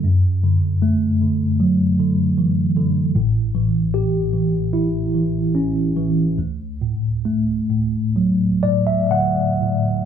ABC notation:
X:1
M:4/4
L:1/16
Q:1/4=75
K:D
V:1 name="Tine electric piano"
z16 | z16 | z8 z2 d e f4 |]
V:2 name="Tine electric piano" clef=bass
F,,2 D,2 A,2 D,2 F,2 D,2 E,2 D,2 | [A,,,A,,]2 E,2 G2 E,2 E2 E,2 C2 E,2 | D,,2 A,,2 A,2 A,,2 F,2 A,,2 D,2 A,,2 |]